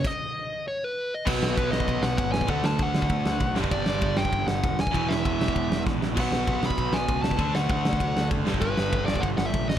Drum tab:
CC |x---------------|x---------------|----------------|----------------|
RD |----------------|----x---x---x---|x---x---x---x---|x---x---x---x---|
SD |----------------|--o---o---o---o-|--o---o---o---o-|--o---o---o---o-|
BD |o---------------|o---o--oo---o--o|o---o--oo---o--o|o---o--oo---o--o|

CC |----------------|x---------------|----------------|----------------|
RD |x---x---x-------|x---x---x---x---|x---x---x---x---|x---x---x---x---|
SD |--o---o---o-o-o-|--o---o---o---o-|--o---o---o---o-|--o---o---o---o-|
BD |o---o--oo---o---|o---o--oo---o--o|o---o--oo---o--o|o---o--oo---o---|